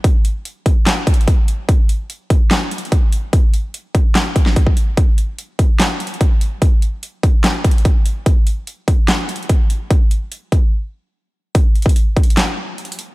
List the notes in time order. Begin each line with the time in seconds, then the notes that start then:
0.04 kick, closed hi-hat
0.25 closed hi-hat
0.45 closed hi-hat
0.66 kick, closed hi-hat
0.86 snare, clap, closed hi-hat
1.07 kick, closed hi-hat
1.14 closed hi-hat
1.21 closed hi-hat
1.28 kick, closed hi-hat
1.48 closed hi-hat
1.69 kick, closed hi-hat
1.89 closed hi-hat
2.10 closed hi-hat
2.30 kick, closed hi-hat
2.51 snare, clap, closed hi-hat
2.71 closed hi-hat
2.78 closed hi-hat
2.85 closed hi-hat
2.92 kick, closed hi-hat
3.12 closed hi-hat
3.33 kick, closed hi-hat
3.54 closed hi-hat
3.74 closed hi-hat
3.95 kick, closed hi-hat
4.15 snare, clap, closed hi-hat
4.36 kick, closed hi-hat
4.46 snare
4.56 kick, closed hi-hat
4.67 kick
4.77 closed hi-hat
4.97 kick, closed hi-hat
5.18 closed hi-hat
5.38 closed hi-hat
5.59 kick, closed hi-hat
5.80 snare, clap, closed hi-hat
6.00 closed hi-hat
6.07 closed hi-hat
6.14 closed hi-hat
6.21 kick, closed hi-hat
6.41 closed hi-hat
6.62 kick, closed hi-hat
6.82 closed hi-hat
7.03 closed hi-hat
7.23 kick, closed hi-hat
7.44 snare, clap, closed hi-hat
7.64 kick, closed hi-hat
7.71 closed hi-hat
7.78 closed hi-hat
7.85 kick, closed hi-hat
8.06 closed hi-hat
8.26 kick, closed hi-hat
8.47 closed hi-hat
8.67 closed hi-hat
8.88 kick, closed hi-hat
9.08 snare, clap, closed hi-hat
9.29 closed hi-hat
9.36 closed hi-hat
9.43 closed hi-hat
9.49 kick, closed hi-hat
9.70 closed hi-hat
9.91 kick, closed hi-hat
10.11 closed hi-hat
10.32 closed hi-hat
10.52 kick, closed hi-hat
11.55 kick, closed hi-hat
11.75 closed hi-hat
11.82 kick, closed hi-hat
11.89 closed hi-hat
11.96 closed hi-hat
12.17 kick, closed hi-hat
12.23 closed hi-hat
12.30 closed hi-hat
12.37 snare, clap, closed hi-hat
12.78 closed hi-hat
12.85 closed hi-hat
12.92 closed hi-hat
12.99 closed hi-hat